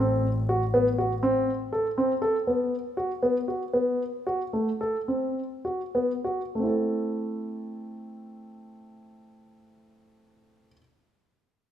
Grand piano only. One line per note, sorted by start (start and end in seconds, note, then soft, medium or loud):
0.00 0.26 C4 medium
0.49 0.62 F#4 medium
0.74 0.87 B3 medium
0.98 1.12 F#4 medium
1.23 1.50 C4 medium
1.73 1.86 A4 medium
1.98 2.11 C4 medium
2.22 2.35 A4 medium
2.47 2.74 B3 medium
2.97 3.11 F#4 medium
3.23 3.36 B3 medium
3.48 3.62 F#4 soft
3.73 4.02 B3 medium
4.27 4.41 F#4 medium
4.53 4.68 A3 soft
4.81 4.96 A4 medium
5.08 5.39 C4 soft
5.65 5.81 F#4 soft
5.95 6.11 B3 medium
6.24 6.41 F#4 soft
6.55 10.68 A3 soft
6.59 10.72 C4 soft
6.59 10.76 E4 soft
6.67 10.80 A4 soft